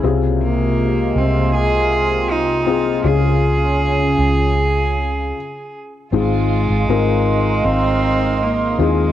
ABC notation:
X:1
M:4/4
L:1/16
Q:1/4=79
K:Ab
V:1 name="Felt piano"
[CFA]8 z6 [CFA]2 | [DFA]8 z8 | [CEFA]4 [CEFB]8 z2 [CEFA]2 |]
V:2 name="Felt piano" clef=bass
C,6 z8 z2 | D,6 z8 z2 | A,,6 z8 z2 |]
V:3 name="Violin section"
z16 | z16 | F4 E12 |]
V:4 name="Analog synth pad"
[C,A,B,F]16 | [D,DA]12 z4 | [A,efc']16 |]
V:5 name="Cello"
z2 B,4 C2 A4 E4 | A12- A2 z2 | A,8 C4 B,2 A,2 |]
V:6 name="Fingered electric bass" clef=bass
C,,6 C,,8- C,,2 | D,,6 D,,6 z4 | A,,,3 A,,, A,,,4 A,,,6 E,,2 |]